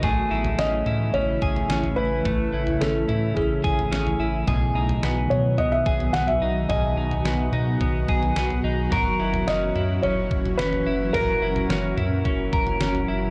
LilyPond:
<<
  \new Staff \with { instrumentName = "Felt piano" } { \time 4/4 \key gis \minor \tempo 4 = 108 r4 dis''4 cis''4. b'8~ | b'4 a'4 gis'4. r8 | r4. cis''8 dis''16 e''8. fis''16 e''8. | dis''2. r4 |
r4 dis''4 cis''4 b'4 | ais'2. r4 | }
  \new Staff \with { instrumentName = "Clean electric guitar" } { \time 4/4 \key gis \minor <a gis'>8 e'8 cis'8 e'8 cis'8 gis'8 cis'8 e'8 | a8 e'8 cis'8 e'8 cis'8 gis'8 cis'8 e'8 | <b, gis'>8 dis'8 b4 b8 gis'8 b8 dis'8 | <b, gis'>8 dis'8 b8 dis'8 b8 gis'8 b8 dis'8 |
<fis ais'>8 e'8 cis'8 e'8 cis'4 cis'8 e'8 | <fis ais'>8 e'8 cis'8 e'8 cis'8 ais'8 cis'8 e'8 | }
  \new Staff \with { instrumentName = "Ambient pad" } { \clef bass \time 4/4 \key gis \minor << { <e e'>1~ | <e e'>1 | <fis fis'>1~ | <fis fis'>1~ |
<fis fis'>1~ | <fis fis'>1 | } \\ { <cis a>1~ | <cis a>1 | <dis b>1~ | <dis b>1 |
<ais, e cis'>1~ | <ais, e cis'>1 | } >> }
  \new Staff \with { instrumentName = "Sub bass" } { \clef bass \time 4/4 \key gis \minor a,,8 a,,8 a,,8 a,8 a,,8 a,,8 a,,8 a,,8 | a,,8 a,,8 a,,8 a,8 a,,8 a,,8 a,,8 a,,8 | b,,8 b,,8 b,,8 b,8 b,,8 b,,8 b,,8 b,,8 | b,,8 b,,8 b,,8 b,8 b,,8 b,,8 b,,8 b,,8 |
fis,,8 fis,,8 fis,,8 fis,8 fis,,8 fis,,8 fis,,8 fis,,8 | fis,,8 fis,,8 fis,,8 fis,8 fis,,8 fis,,8 fis,,8 fis,,8 | }
  \new DrumStaff \with { instrumentName = "Drums" } \drummode { \time 4/4 <bd tomfh>8. tomfh16 sn8 tomfh8 tomfh8 bd16 tomfh16 sn16 tomfh8. | <bd tomfh>8. tomfh16 sn8 tomfh8 <bd tomfh>8 bd16 tomfh16 sn16 tomfh8. | <bd tomfh>8. tomfh16 sn8 tomfh8 tomfh8 bd16 tomfh16 sn16 tomfh8. | <bd tomfh>8. tomfh16 sn8 tomfh8 <bd tomfh>8 bd16 tomfh16 sn16 tomfh8. |
<bd tomfh>8. tomfh16 sn8 tomfh8 tomfh8 bd16 tomfh16 sn16 tomfh8. | <bd tomfh>8. tomfh16 sn8 tomfh8 <bd tomfh>8 bd16 tomfh16 sn16 tomfh8. | }
>>